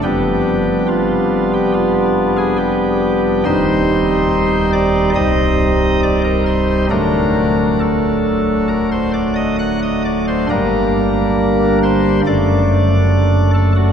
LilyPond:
<<
  \new Staff \with { instrumentName = "Pipe organ" } { \time 4/4 \key g \minor \tempo 4 = 69 g'4 f'8. g'16 f'8. aes'16 g'4 | c''4. d''8 ees''4 d''16 bes'16 c''8 | bes'4 a'4 bes'16 c''16 d''16 ees''16 fis''16 ees''16 d''16 c''16 | bes'4. c''8 d''4. a'16 fis'16 | }
  \new Staff \with { instrumentName = "Pipe organ" } { \clef bass \time 4/4 \key g \minor <f,, f, g b d'>1 | <ees,, ees, g c' ees'>2 <c,, c, g c' ees'>2 | <d,, d, fis a d'>1 | <g,, g, g bes d'>2 <fis,, fis, a d'>2 | }
>>